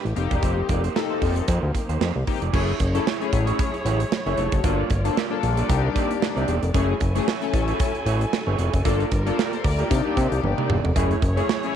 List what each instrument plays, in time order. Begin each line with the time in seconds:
Already playing: string section A3 D4 G4
0.05 analog synth bass A1, muted clean electric guitar stroke, closed hi-hat
0.16 analog synth bass F1, string section F3 A#3 C4 D#4, analog polysynth A#3 C4 D#4 G4, muted clean electric guitar stroke, closed hi-hat
0.31 analog synth bass E1, clean electric guitar A#3 D#4 G4 D5, kick, closed hi-hat
0.43 analog synth bass F1, clean electric guitar A#3 D#4 G4 C5, kick, closed hi-hat
0.69 analog synth bass F1, clean electric guitar A#3 D#4 G4 D5, kick, closed hi-hat
0.84 clean electric guitar A#3 D#4 G4 C5, closed hi-hat
0.95 analog polysynth A#3 C4 D#4 A4, muted clean electric guitar stroke, snare
1.10 clean electric guitar A#3 D#4 G4 C5
1.22 analog synth bass F1, clean electric guitar A#3 D#4 G4 C5, kick, open hi-hat
1.36 muted clean electric guitar stroke, closed hi-hat
1.48 analog synth bass F2, clean electric guitar A#3 D#4 G4 C5, kick, closed hi-hat
1.63 analog synth bass D2, muted clean electric guitar stroke
1.74 muted clean electric guitar stroke, kick, closed hi-hat
1.89 analog synth bass D#2, clean electric guitar A#3 D#4 G4 C5, closed hi-hat
2.00 analog synth bass F2, clean electric guitar A#3 D#4 G4 C5, snare
2.15 analog synth bass C2, muted clean electric guitar stroke
2.27 analog polysynth A#3 C4 D#4 G4, muted clean electric guitar stroke, kick, open hi-hat
2.42 analog synth bass F1, clean electric guitar A#3 D#4 G4 D5, closed hi-hat
2.53 analog synth bass F#1, string section F#3 C#4 E4 G#4 C#5, analog polysynth A3 C#4 E4 G#4, clean electric guitar A3 E4 G#4 C#5, kick, crash
2.80 analog synth bass F#1, muted clean electric guitar stroke, kick, closed hi-hat
2.94 analog polysynth A3 C#4 E4 A4, clean electric guitar A3 E4 G#4 C#5, closed hi-hat
3.06 clean electric guitar A3 E4 G#4 C#5, snare
3.21 analog polysynth A3 C#4 E4 G#4, muted clean electric guitar stroke, closed hi-hat
3.33 analog synth bass A1, muted clean electric guitar stroke, kick, closed hi-hat
3.47 clean electric guitar A3 E4 G#4 C#5, closed hi-hat
3.59 kick, closed hi-hat
3.74 muted clean electric guitar stroke, closed hi-hat
3.85 analog synth bass A1, clean electric guitar A3 E4 G#4 C#5, closed hi-hat
4.00 muted clean electric guitar stroke, closed hi-hat
4.12 muted clean electric guitar stroke, snare
4.26 analog synth bass F#1, clean electric guitar A3 E4 G#4 C#5, analog polysynth C#5 E5, closed hi-hat
4.38 analog synth bass F1, clean electric guitar A3 E4 G#4 C#5, analog polysynth A4 C#5, closed hi-hat
4.52 analog synth bass F#1, analog polysynth F#4 A4, muted clean electric guitar stroke, kick, closed hi-hat
4.63 analog synth bass G1, string section G3 A#3 F4 D5, analog polysynth A#3 D4 F4 A4, clean electric guitar A#3 F4 A4 D5, kick, closed hi-hat
4.90 analog synth bass G1, muted clean electric guitar stroke, kick, closed hi-hat
5.04 analog polysynth A#3 D4 F4 A4, clean electric guitar A#3 F4 A4 D5, closed hi-hat
5.16 clean electric guitar A#3 F4 A4 D5, snare
5.30 analog polysynth A#3 D4 F4 A4, muted clean electric guitar stroke
5.43 analog synth bass A#1, muted clean electric guitar stroke, closed hi-hat
5.57 clean electric guitar A#3 F4 A4 D5, closed hi-hat
5.68 analog synth bass C2, string section C3 D#3 A#3, analog polysynth A#3 D4 D#4 G4, kick, closed hi-hat
5.84 muted clean electric guitar stroke
5.95 clean electric guitar A#3 D#4 G4 D5, kick, closed hi-hat
6.10 muted clean electric guitar stroke, closed hi-hat
6.22 muted clean electric guitar stroke, snare
6.36 analog synth bass C2, clean electric guitar A#3 D#4 G4 D5, closed hi-hat
6.48 analog synth bass E1, clean electric guitar A#3 D#4 G4 D5, closed hi-hat
6.62 analog synth bass F1, muted clean electric guitar stroke, closed hi-hat
6.74 analog synth bass F#1, string section F#3 C#4 E4 A4 G#5, analog polysynth A3 C#4 E4 G#4, clean electric guitar A3 E4 G#4 C#5, kick, closed hi-hat
7.00 analog synth bass F#1, muted clean electric guitar stroke, kick, closed hi-hat
7.15 analog polysynth A3 C#4 E4 G#4, clean electric guitar A3 E4 G#4 C#5, closed hi-hat
7.27 clean electric guitar A3 E4 G#4 C#5, snare
7.42 analog polysynth A3 C#4 E4 A4, muted clean electric guitar stroke, closed hi-hat
7.53 analog synth bass A1, muted clean electric guitar stroke, kick, closed hi-hat
7.68 clean electric guitar A3 E4 G#4 C#5, closed hi-hat
7.80 kick, closed hi-hat
7.94 muted clean electric guitar stroke, closed hi-hat
8.06 analog synth bass A1, clean electric guitar A3 E4 G#4 C#5, closed hi-hat
8.20 muted clean electric guitar stroke, closed hi-hat
8.32 muted clean electric guitar stroke, snare
8.47 analog synth bass G1, clean electric guitar A3 E4 G#4 C#5
8.58 analog synth bass F1, clean electric guitar A3 E4 G#4 C#5, closed hi-hat
8.73 analog synth bass F#1, muted clean electric guitar stroke, kick, closed hi-hat
8.85 analog synth bass G1, string section G3 F4 A#4 D5, analog polysynth A#3 D4 F4 A4, clean electric guitar A#3 F4 A4 D5, kick, closed hi-hat
9.00 closed hi-hat
9.11 analog synth bass G1, muted clean electric guitar stroke, kick, closed hi-hat
9.26 analog polysynth A#3 D4 F4 A4, clean electric guitar A#3 F4 A4 D5, closed hi-hat
9.38 clean electric guitar A#3 F4 A4 D5, analog polysynth G4 A#4, snare
9.52 analog polysynth A4 C5, muted clean electric guitar stroke, closed hi-hat
9.64 analog synth bass D2, analog polysynth A#4 D5, muted clean electric guitar stroke, kick, open hi-hat
9.79 clean electric guitar A#3 F4 A4 D5, analog polysynth G4 A#4, closed hi-hat
9.89 string section C3 D#3 A#3, analog synth bass C3, analog polysynth A#3 D4 D#4 G4, muted clean electric guitar stroke, kick, closed hi-hat
10.05 clean electric guitar A#3 D#4 G4 D5
10.16 analog synth bass C3, clean electric guitar A#3 D#4 G4 D5, kick, closed hi-hat
10.31 analog synth bass C2, muted clean electric guitar stroke, closed hi-hat
10.43 analog synth bass G1, muted clean electric guitar stroke, high tom
10.58 clean electric guitar A#3 D#4 G4 D5, mid tom
10.69 analog synth bass E1, clean electric guitar A#3 D#4 G4 D5, mid tom
10.84 analog synth bass F1, muted clean electric guitar stroke, floor tom
10.95 analog synth bass F#1, string section F#3 C#4 E4 G#4 C#5, analog polysynth A3 C#4 E4 G#4, clean electric guitar A3 E4 G#4 C#5, kick, closed hi-hat
11.11 closed hi-hat
11.22 analog synth bass F#1, muted clean electric guitar stroke, kick, closed hi-hat
11.36 analog polysynth A3 C#4 E4 G#4, clean electric guitar A3 E4 G#4 C#5, closed hi-hat
11.48 clean electric guitar A3 E4 G#4 C#5, snare
11.63 analog polysynth A3 C#4 E4 G#4, muted clean electric guitar stroke, closed hi-hat